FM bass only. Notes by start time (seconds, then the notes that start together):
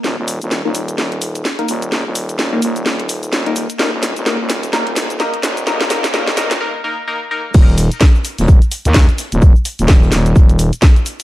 0.04 D#1
0.18 D#1
0.42 D#1
0.65 D#1
0.98 D#1
1.69 D#1
1.92 D#1
2.06 D#1
2.39 D#1
2.62 D#1
2.86 D#1
3.33 D#1
3.79 D#1
3.93 D#1
4.17 D#1
4.40 D#1
4.73 D#1
5.43 D#1
5.67 D#1
5.81 D#1
6.14 D#1
6.37 D#1
7.55 D#1
8.39 D#1
8.85 D#2
9.32 D#1
9.79 D#1
10.12 D#1
10.36 D#1